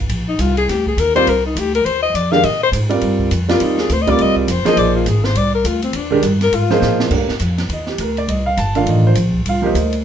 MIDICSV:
0, 0, Header, 1, 6, 480
1, 0, Start_track
1, 0, Tempo, 292540
1, 166, Time_signature, 4, 2, 24, 8
1, 16482, End_track
2, 0, Start_track
2, 0, Title_t, "Alto saxophone"
2, 0, Program_c, 0, 65
2, 464, Note_on_c, 0, 63, 89
2, 658, Note_on_c, 0, 65, 82
2, 683, Note_off_c, 0, 63, 0
2, 926, Note_off_c, 0, 65, 0
2, 936, Note_on_c, 0, 68, 103
2, 1143, Note_on_c, 0, 67, 91
2, 1167, Note_off_c, 0, 68, 0
2, 1429, Note_off_c, 0, 67, 0
2, 1440, Note_on_c, 0, 68, 86
2, 1631, Note_on_c, 0, 70, 94
2, 1656, Note_off_c, 0, 68, 0
2, 1886, Note_off_c, 0, 70, 0
2, 1896, Note_on_c, 0, 72, 115
2, 2120, Note_on_c, 0, 70, 95
2, 2145, Note_off_c, 0, 72, 0
2, 2389, Note_off_c, 0, 70, 0
2, 2398, Note_on_c, 0, 63, 78
2, 2605, Note_on_c, 0, 67, 93
2, 2630, Note_off_c, 0, 63, 0
2, 2860, Note_off_c, 0, 67, 0
2, 2870, Note_on_c, 0, 70, 91
2, 3041, Note_on_c, 0, 72, 94
2, 3066, Note_off_c, 0, 70, 0
2, 3310, Note_off_c, 0, 72, 0
2, 3320, Note_on_c, 0, 75, 102
2, 3534, Note_on_c, 0, 74, 89
2, 3559, Note_off_c, 0, 75, 0
2, 3802, Note_on_c, 0, 77, 109
2, 3827, Note_off_c, 0, 74, 0
2, 4014, Note_on_c, 0, 75, 86
2, 4039, Note_off_c, 0, 77, 0
2, 4303, Note_off_c, 0, 75, 0
2, 4318, Note_on_c, 0, 72, 104
2, 4423, Note_off_c, 0, 72, 0
2, 5737, Note_on_c, 0, 65, 88
2, 5955, Note_on_c, 0, 63, 78
2, 5979, Note_off_c, 0, 65, 0
2, 6222, Note_off_c, 0, 63, 0
2, 6232, Note_on_c, 0, 68, 98
2, 6443, Note_on_c, 0, 72, 88
2, 6468, Note_off_c, 0, 68, 0
2, 6593, Note_on_c, 0, 75, 97
2, 6618, Note_off_c, 0, 72, 0
2, 6745, Note_on_c, 0, 74, 95
2, 6769, Note_off_c, 0, 75, 0
2, 6921, Note_on_c, 0, 75, 107
2, 6946, Note_off_c, 0, 74, 0
2, 7180, Note_off_c, 0, 75, 0
2, 7189, Note_on_c, 0, 68, 54
2, 7399, Note_on_c, 0, 72, 89
2, 7424, Note_off_c, 0, 68, 0
2, 7657, Note_on_c, 0, 75, 119
2, 7682, Note_off_c, 0, 72, 0
2, 7849, Note_on_c, 0, 74, 102
2, 7873, Note_off_c, 0, 75, 0
2, 8128, Note_off_c, 0, 74, 0
2, 8138, Note_on_c, 0, 65, 78
2, 8333, Note_on_c, 0, 68, 88
2, 8357, Note_off_c, 0, 65, 0
2, 8605, Note_on_c, 0, 72, 101
2, 8629, Note_off_c, 0, 68, 0
2, 8813, Note_on_c, 0, 74, 120
2, 8838, Note_off_c, 0, 72, 0
2, 9085, Note_off_c, 0, 74, 0
2, 9095, Note_on_c, 0, 70, 87
2, 9294, Note_on_c, 0, 65, 86
2, 9319, Note_off_c, 0, 70, 0
2, 9568, Note_off_c, 0, 65, 0
2, 9578, Note_on_c, 0, 60, 89
2, 9780, Note_on_c, 0, 62, 83
2, 9804, Note_off_c, 0, 60, 0
2, 10247, Note_off_c, 0, 62, 0
2, 10545, Note_on_c, 0, 70, 93
2, 10740, Note_on_c, 0, 65, 94
2, 10764, Note_off_c, 0, 70, 0
2, 11502, Note_off_c, 0, 65, 0
2, 16482, End_track
3, 0, Start_track
3, 0, Title_t, "Grand piano"
3, 0, Program_c, 1, 0
3, 1889, Note_on_c, 1, 60, 76
3, 1892, Note_on_c, 1, 55, 74
3, 1897, Note_on_c, 1, 65, 69
3, 1906, Note_on_c, 1, 70, 70
3, 1907, Note_on_c, 1, 74, 86
3, 2061, Note_off_c, 1, 60, 0
3, 2063, Note_off_c, 1, 55, 0
3, 2065, Note_off_c, 1, 65, 0
3, 2070, Note_off_c, 1, 70, 0
3, 2070, Note_off_c, 1, 74, 0
3, 3800, Note_on_c, 1, 51, 80
3, 3804, Note_on_c, 1, 56, 72
3, 3812, Note_on_c, 1, 62, 72
3, 3820, Note_on_c, 1, 67, 75
3, 3821, Note_on_c, 1, 70, 80
3, 3976, Note_off_c, 1, 51, 0
3, 3978, Note_off_c, 1, 56, 0
3, 3982, Note_off_c, 1, 62, 0
3, 3986, Note_off_c, 1, 67, 0
3, 3986, Note_off_c, 1, 70, 0
3, 4749, Note_on_c, 1, 55, 73
3, 4750, Note_on_c, 1, 60, 67
3, 4753, Note_on_c, 1, 65, 68
3, 4760, Note_on_c, 1, 70, 69
3, 4763, Note_on_c, 1, 74, 83
3, 5391, Note_off_c, 1, 55, 0
3, 5391, Note_off_c, 1, 60, 0
3, 5393, Note_off_c, 1, 65, 0
3, 5396, Note_off_c, 1, 70, 0
3, 5398, Note_off_c, 1, 74, 0
3, 5718, Note_on_c, 1, 55, 72
3, 5719, Note_on_c, 1, 60, 71
3, 5727, Note_on_c, 1, 65, 75
3, 5733, Note_on_c, 1, 70, 71
3, 5733, Note_on_c, 1, 74, 82
3, 6355, Note_off_c, 1, 55, 0
3, 6355, Note_off_c, 1, 60, 0
3, 6359, Note_off_c, 1, 65, 0
3, 6362, Note_off_c, 1, 70, 0
3, 6362, Note_off_c, 1, 74, 0
3, 6680, Note_on_c, 1, 55, 90
3, 6686, Note_on_c, 1, 60, 77
3, 6692, Note_on_c, 1, 65, 77
3, 6694, Note_on_c, 1, 70, 72
3, 6694, Note_on_c, 1, 74, 89
3, 7315, Note_off_c, 1, 55, 0
3, 7318, Note_off_c, 1, 60, 0
3, 7320, Note_off_c, 1, 65, 0
3, 7322, Note_off_c, 1, 70, 0
3, 7322, Note_off_c, 1, 74, 0
3, 7631, Note_on_c, 1, 53, 94
3, 7636, Note_on_c, 1, 68, 83
3, 7638, Note_on_c, 1, 58, 84
3, 7639, Note_on_c, 1, 63, 88
3, 7649, Note_on_c, 1, 72, 94
3, 8269, Note_off_c, 1, 53, 0
3, 8272, Note_off_c, 1, 68, 0
3, 8273, Note_off_c, 1, 58, 0
3, 8274, Note_off_c, 1, 63, 0
3, 8278, Note_off_c, 1, 72, 0
3, 10018, Note_on_c, 1, 51, 87
3, 10029, Note_on_c, 1, 56, 83
3, 10039, Note_on_c, 1, 62, 79
3, 10041, Note_on_c, 1, 67, 77
3, 10043, Note_on_c, 1, 70, 95
3, 10201, Note_off_c, 1, 51, 0
3, 10206, Note_off_c, 1, 56, 0
3, 10211, Note_off_c, 1, 62, 0
3, 10212, Note_off_c, 1, 67, 0
3, 10213, Note_off_c, 1, 70, 0
3, 11001, Note_on_c, 1, 53, 91
3, 11006, Note_on_c, 1, 63, 85
3, 11007, Note_on_c, 1, 58, 84
3, 11011, Note_on_c, 1, 72, 97
3, 11017, Note_on_c, 1, 68, 77
3, 11634, Note_off_c, 1, 53, 0
3, 11636, Note_off_c, 1, 58, 0
3, 11636, Note_off_c, 1, 63, 0
3, 11639, Note_off_c, 1, 72, 0
3, 11641, Note_off_c, 1, 68, 0
3, 11656, Note_on_c, 1, 57, 62
3, 11656, Note_on_c, 1, 62, 54
3, 11672, Note_on_c, 1, 67, 53
3, 11675, Note_on_c, 1, 70, 68
3, 11931, Note_off_c, 1, 57, 0
3, 11931, Note_off_c, 1, 62, 0
3, 11938, Note_off_c, 1, 67, 0
3, 11940, Note_off_c, 1, 70, 0
3, 12683, Note_on_c, 1, 75, 84
3, 12946, Note_off_c, 1, 75, 0
3, 12948, Note_on_c, 1, 67, 56
3, 13120, Note_off_c, 1, 67, 0
3, 13136, Note_on_c, 1, 70, 77
3, 13413, Note_off_c, 1, 70, 0
3, 13427, Note_on_c, 1, 74, 86
3, 13600, Note_off_c, 1, 74, 0
3, 13609, Note_on_c, 1, 75, 89
3, 13884, Note_on_c, 1, 77, 93
3, 13889, Note_off_c, 1, 75, 0
3, 14068, Note_off_c, 1, 77, 0
3, 14084, Note_on_c, 1, 81, 101
3, 14360, Note_on_c, 1, 57, 68
3, 14361, Note_on_c, 1, 51, 75
3, 14367, Note_off_c, 1, 81, 0
3, 14369, Note_on_c, 1, 65, 76
3, 14370, Note_on_c, 1, 62, 74
3, 14381, Note_on_c, 1, 77, 94
3, 14558, Note_off_c, 1, 77, 0
3, 14596, Note_on_c, 1, 75, 80
3, 14864, Note_off_c, 1, 75, 0
3, 14880, Note_on_c, 1, 72, 91
3, 14984, Note_off_c, 1, 72, 0
3, 14996, Note_off_c, 1, 57, 0
3, 14997, Note_off_c, 1, 51, 0
3, 15001, Note_off_c, 1, 62, 0
3, 15001, Note_off_c, 1, 65, 0
3, 15570, Note_on_c, 1, 77, 89
3, 15578, Note_on_c, 1, 65, 69
3, 15781, Note_on_c, 1, 53, 72
3, 15792, Note_on_c, 1, 58, 69
3, 15804, Note_on_c, 1, 67, 84
3, 15805, Note_on_c, 1, 63, 71
3, 15830, Note_off_c, 1, 63, 0
3, 15832, Note_off_c, 1, 77, 0
3, 15837, Note_off_c, 1, 65, 0
3, 15849, Note_on_c, 1, 75, 83
3, 15851, Note_on_c, 1, 70, 72
3, 15851, Note_on_c, 1, 72, 62
3, 15854, Note_on_c, 1, 63, 70
3, 15966, Note_off_c, 1, 53, 0
3, 15971, Note_off_c, 1, 58, 0
3, 15978, Note_off_c, 1, 67, 0
3, 16282, Note_off_c, 1, 70, 0
3, 16282, Note_off_c, 1, 72, 0
3, 16282, Note_off_c, 1, 75, 0
3, 16284, Note_off_c, 1, 63, 0
3, 16482, End_track
4, 0, Start_track
4, 0, Title_t, "Upright bass"
4, 0, Program_c, 2, 32
4, 152, Note_on_c, 2, 34, 88
4, 624, Note_off_c, 2, 34, 0
4, 634, Note_on_c, 2, 36, 107
4, 1105, Note_off_c, 2, 36, 0
4, 1123, Note_on_c, 2, 38, 100
4, 1582, Note_off_c, 2, 38, 0
4, 1592, Note_on_c, 2, 39, 91
4, 2064, Note_off_c, 2, 39, 0
4, 2080, Note_on_c, 2, 36, 83
4, 2548, Note_off_c, 2, 36, 0
4, 2555, Note_on_c, 2, 38, 106
4, 3025, Note_off_c, 2, 38, 0
4, 3041, Note_on_c, 2, 39, 91
4, 3503, Note_off_c, 2, 39, 0
4, 3512, Note_on_c, 2, 41, 89
4, 3983, Note_off_c, 2, 41, 0
4, 4000, Note_on_c, 2, 46, 83
4, 4454, Note_off_c, 2, 46, 0
4, 4463, Note_on_c, 2, 44, 100
4, 4938, Note_off_c, 2, 44, 0
4, 4951, Note_on_c, 2, 43, 98
4, 5421, Note_off_c, 2, 43, 0
4, 5430, Note_on_c, 2, 41, 97
4, 5901, Note_off_c, 2, 41, 0
4, 5913, Note_on_c, 2, 39, 82
4, 6382, Note_off_c, 2, 39, 0
4, 6389, Note_on_c, 2, 38, 104
4, 6860, Note_off_c, 2, 38, 0
4, 6880, Note_on_c, 2, 36, 95
4, 7332, Note_off_c, 2, 36, 0
4, 7342, Note_on_c, 2, 29, 101
4, 7623, Note_off_c, 2, 29, 0
4, 7817, Note_on_c, 2, 34, 92
4, 8292, Note_off_c, 2, 34, 0
4, 8300, Note_on_c, 2, 32, 109
4, 8773, Note_off_c, 2, 32, 0
4, 8783, Note_on_c, 2, 36, 93
4, 9248, Note_off_c, 2, 36, 0
4, 9258, Note_on_c, 2, 38, 100
4, 9726, Note_off_c, 2, 38, 0
4, 9736, Note_on_c, 2, 39, 89
4, 10210, Note_off_c, 2, 39, 0
4, 10222, Note_on_c, 2, 43, 108
4, 10694, Note_off_c, 2, 43, 0
4, 10704, Note_on_c, 2, 44, 97
4, 11175, Note_off_c, 2, 44, 0
4, 11189, Note_on_c, 2, 46, 110
4, 11651, Note_off_c, 2, 46, 0
4, 11660, Note_on_c, 2, 43, 83
4, 11941, Note_off_c, 2, 43, 0
4, 12142, Note_on_c, 2, 41, 100
4, 12608, Note_off_c, 2, 41, 0
4, 12618, Note_on_c, 2, 39, 88
4, 13089, Note_off_c, 2, 39, 0
4, 13099, Note_on_c, 2, 38, 97
4, 13574, Note_off_c, 2, 38, 0
4, 13582, Note_on_c, 2, 36, 84
4, 14056, Note_off_c, 2, 36, 0
4, 14067, Note_on_c, 2, 31, 101
4, 14529, Note_off_c, 2, 31, 0
4, 14539, Note_on_c, 2, 33, 95
4, 15015, Note_off_c, 2, 33, 0
4, 15027, Note_on_c, 2, 34, 100
4, 15500, Note_off_c, 2, 34, 0
4, 15513, Note_on_c, 2, 36, 88
4, 15979, Note_off_c, 2, 36, 0
4, 15989, Note_on_c, 2, 38, 103
4, 16462, Note_off_c, 2, 38, 0
4, 16482, End_track
5, 0, Start_track
5, 0, Title_t, "Muted upright bass strokes"
5, 7640, Note_on_c, 9, 29, 41
5, 7804, Note_off_c, 9, 29, 0
5, 11965, Note_on_c, 9, 29, 38
5, 12129, Note_off_c, 9, 29, 0
5, 16482, End_track
6, 0, Start_track
6, 0, Title_t, "Drums"
6, 155, Note_on_c, 9, 51, 75
6, 319, Note_off_c, 9, 51, 0
6, 636, Note_on_c, 9, 44, 56
6, 636, Note_on_c, 9, 51, 81
6, 800, Note_off_c, 9, 44, 0
6, 800, Note_off_c, 9, 51, 0
6, 938, Note_on_c, 9, 51, 56
6, 1102, Note_off_c, 9, 51, 0
6, 1134, Note_on_c, 9, 38, 41
6, 1135, Note_on_c, 9, 51, 62
6, 1298, Note_off_c, 9, 38, 0
6, 1299, Note_off_c, 9, 51, 0
6, 1420, Note_on_c, 9, 36, 59
6, 1584, Note_off_c, 9, 36, 0
6, 1608, Note_on_c, 9, 44, 54
6, 1608, Note_on_c, 9, 51, 74
6, 1772, Note_off_c, 9, 44, 0
6, 1772, Note_off_c, 9, 51, 0
6, 1900, Note_on_c, 9, 51, 55
6, 2064, Note_off_c, 9, 51, 0
6, 2083, Note_on_c, 9, 51, 72
6, 2248, Note_off_c, 9, 51, 0
6, 2569, Note_on_c, 9, 44, 68
6, 2569, Note_on_c, 9, 51, 77
6, 2733, Note_off_c, 9, 44, 0
6, 2733, Note_off_c, 9, 51, 0
6, 2867, Note_on_c, 9, 51, 55
6, 3031, Note_off_c, 9, 51, 0
6, 3050, Note_on_c, 9, 51, 68
6, 3214, Note_off_c, 9, 51, 0
6, 3525, Note_on_c, 9, 44, 55
6, 3525, Note_on_c, 9, 51, 70
6, 3690, Note_off_c, 9, 44, 0
6, 3690, Note_off_c, 9, 51, 0
6, 3809, Note_on_c, 9, 38, 43
6, 3973, Note_off_c, 9, 38, 0
6, 3994, Note_on_c, 9, 51, 78
6, 4158, Note_off_c, 9, 51, 0
6, 4483, Note_on_c, 9, 44, 66
6, 4483, Note_on_c, 9, 51, 78
6, 4647, Note_off_c, 9, 44, 0
6, 4647, Note_off_c, 9, 51, 0
6, 4766, Note_on_c, 9, 51, 54
6, 4930, Note_off_c, 9, 51, 0
6, 4945, Note_on_c, 9, 51, 62
6, 5109, Note_off_c, 9, 51, 0
6, 5240, Note_on_c, 9, 36, 64
6, 5404, Note_off_c, 9, 36, 0
6, 5431, Note_on_c, 9, 44, 54
6, 5431, Note_on_c, 9, 51, 77
6, 5595, Note_off_c, 9, 44, 0
6, 5595, Note_off_c, 9, 51, 0
6, 5730, Note_on_c, 9, 38, 68
6, 5731, Note_on_c, 9, 51, 58
6, 5894, Note_off_c, 9, 38, 0
6, 5896, Note_off_c, 9, 51, 0
6, 5908, Note_on_c, 9, 51, 79
6, 6072, Note_off_c, 9, 51, 0
6, 6199, Note_on_c, 9, 38, 56
6, 6364, Note_off_c, 9, 38, 0
6, 6391, Note_on_c, 9, 44, 67
6, 6391, Note_on_c, 9, 51, 80
6, 6555, Note_off_c, 9, 44, 0
6, 6555, Note_off_c, 9, 51, 0
6, 6680, Note_on_c, 9, 36, 65
6, 6683, Note_on_c, 9, 51, 52
6, 6844, Note_off_c, 9, 36, 0
6, 6847, Note_off_c, 9, 51, 0
6, 6867, Note_on_c, 9, 51, 65
6, 7031, Note_off_c, 9, 51, 0
6, 7160, Note_on_c, 9, 36, 58
6, 7324, Note_off_c, 9, 36, 0
6, 7352, Note_on_c, 9, 44, 64
6, 7352, Note_on_c, 9, 51, 79
6, 7516, Note_off_c, 9, 44, 0
6, 7516, Note_off_c, 9, 51, 0
6, 7641, Note_on_c, 9, 38, 59
6, 7643, Note_on_c, 9, 51, 59
6, 7805, Note_off_c, 9, 38, 0
6, 7807, Note_off_c, 9, 51, 0
6, 7826, Note_on_c, 9, 51, 78
6, 7990, Note_off_c, 9, 51, 0
6, 8302, Note_on_c, 9, 44, 69
6, 8302, Note_on_c, 9, 51, 76
6, 8466, Note_off_c, 9, 44, 0
6, 8466, Note_off_c, 9, 51, 0
6, 8598, Note_on_c, 9, 38, 64
6, 8762, Note_off_c, 9, 38, 0
6, 8785, Note_on_c, 9, 51, 73
6, 8949, Note_off_c, 9, 51, 0
6, 9266, Note_on_c, 9, 44, 54
6, 9266, Note_on_c, 9, 51, 82
6, 9430, Note_off_c, 9, 44, 0
6, 9430, Note_off_c, 9, 51, 0
6, 9555, Note_on_c, 9, 51, 60
6, 9719, Note_off_c, 9, 51, 0
6, 9732, Note_on_c, 9, 51, 82
6, 9896, Note_off_c, 9, 51, 0
6, 10215, Note_on_c, 9, 44, 62
6, 10215, Note_on_c, 9, 51, 82
6, 10379, Note_off_c, 9, 44, 0
6, 10379, Note_off_c, 9, 51, 0
6, 10513, Note_on_c, 9, 38, 41
6, 10514, Note_on_c, 9, 51, 56
6, 10677, Note_off_c, 9, 38, 0
6, 10678, Note_off_c, 9, 51, 0
6, 10708, Note_on_c, 9, 51, 77
6, 10872, Note_off_c, 9, 51, 0
6, 10997, Note_on_c, 9, 38, 47
6, 11161, Note_off_c, 9, 38, 0
6, 11193, Note_on_c, 9, 38, 53
6, 11195, Note_on_c, 9, 44, 68
6, 11357, Note_off_c, 9, 38, 0
6, 11359, Note_off_c, 9, 44, 0
6, 11482, Note_on_c, 9, 38, 78
6, 11647, Note_off_c, 9, 38, 0
6, 11661, Note_on_c, 9, 49, 84
6, 11663, Note_on_c, 9, 36, 87
6, 11825, Note_off_c, 9, 49, 0
6, 11827, Note_off_c, 9, 36, 0
6, 11956, Note_on_c, 9, 38, 53
6, 12120, Note_off_c, 9, 38, 0
6, 12135, Note_on_c, 9, 44, 69
6, 12135, Note_on_c, 9, 51, 71
6, 12299, Note_off_c, 9, 44, 0
6, 12299, Note_off_c, 9, 51, 0
6, 12440, Note_on_c, 9, 38, 55
6, 12441, Note_on_c, 9, 51, 53
6, 12604, Note_off_c, 9, 38, 0
6, 12605, Note_off_c, 9, 51, 0
6, 12626, Note_on_c, 9, 51, 71
6, 12790, Note_off_c, 9, 51, 0
6, 12906, Note_on_c, 9, 38, 44
6, 13070, Note_off_c, 9, 38, 0
6, 13097, Note_on_c, 9, 44, 53
6, 13097, Note_on_c, 9, 51, 79
6, 13261, Note_off_c, 9, 44, 0
6, 13261, Note_off_c, 9, 51, 0
6, 13405, Note_on_c, 9, 51, 50
6, 13569, Note_off_c, 9, 51, 0
6, 13594, Note_on_c, 9, 51, 71
6, 13758, Note_off_c, 9, 51, 0
6, 14067, Note_on_c, 9, 44, 52
6, 14067, Note_on_c, 9, 51, 69
6, 14231, Note_off_c, 9, 44, 0
6, 14231, Note_off_c, 9, 51, 0
6, 14358, Note_on_c, 9, 51, 50
6, 14522, Note_off_c, 9, 51, 0
6, 14547, Note_on_c, 9, 51, 65
6, 14711, Note_off_c, 9, 51, 0
6, 15019, Note_on_c, 9, 44, 67
6, 15019, Note_on_c, 9, 51, 71
6, 15183, Note_off_c, 9, 44, 0
6, 15183, Note_off_c, 9, 51, 0
6, 15320, Note_on_c, 9, 36, 61
6, 15484, Note_off_c, 9, 36, 0
6, 15516, Note_on_c, 9, 51, 75
6, 15680, Note_off_c, 9, 51, 0
6, 15998, Note_on_c, 9, 44, 55
6, 15998, Note_on_c, 9, 51, 72
6, 16163, Note_off_c, 9, 44, 0
6, 16163, Note_off_c, 9, 51, 0
6, 16286, Note_on_c, 9, 51, 56
6, 16450, Note_off_c, 9, 51, 0
6, 16482, End_track
0, 0, End_of_file